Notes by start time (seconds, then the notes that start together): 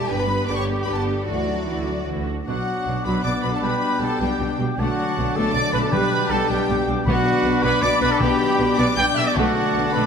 0.09 G1 G3 B3 D4 G4 B4 G5
0.18 B4 B5
0.28 G3 B3
0.47 G1 G3 B3 D4 G4 D5 D6
0.55 C#5 C#6
0.68 G3 B3
0.83 G1 B3 B5
0.87 G3 D4 B4
0.94 A4 A5
1.08 G3 B3
1.24 D2 F#3 D4 E4 F#4 D5
1.29 E3
1.46 F#3 D4
1.65 D2 E3 E4
1.87 F#3 D4
2.08 D2 E3 E4
2.27 F#3 D4
2.46 B1 B2 F#3 B3 D4 F#4 F#5 D6
2.86 B1 B2 F#3
3.04 B1 B2 F#3 B4 B5
3.24 B1 B2 F#3 D5 D6
3.42 B1 B2 F#3 B4 B5
3.51 A4 A5
3.62 B1 B2 G3 B4 G5 B5
3.99 B1 B2 G3 A4 A5
4.19 B1 B2 G3 G4 G5
4.39 B1 B2 G3
4.59 B1 B2 G3
4.77 B1 B2 D3 F#3 A3 D4 F#4 F#5 A5 D6
5.17 B1 B2 A3
5.33 B1 B2 A3 A4 A5
5.53 B1 B2 A3 D5 D6
5.73 B1 B2 A3 B4 B5
5.82 A4 A5
5.91 B1 B2 G3 B3 B4 G5 B5
6.28 B1 B2 A4 A5
6.32 G3 A4
6.47 B1 B2 G3 G4 G5
6.69 B1 B2 G3
6.87 B1 B2 G3
7.06 B1 B2 B3 D4 F#4 F#5 B5 D6
7.43 B1 B2 B3
7.62 B1 B2 B3 B4 B5
7.81 B1 B2 B3 D4 D5 D6
8.01 B1 B2 B3 B4 B5
8.12 A4 A5
8.19 B1 B2 G3 B3 D4 G4 G5
8.58 B1 B2 B3
8.77 B1 B2 B3 D5 D6
8.95 B1 B2 G3 B3 D4 G5 G6
9.14 B1 B2 B3 E5 E6
9.18 E6
9.24 D5 D6
9.33 B1 B2 D3 A3 D4 F#4 F#5 A5 D6
9.37 A3 D4
9.75 B1 B2 A3
9.92 B1 B2 A3 B4 B5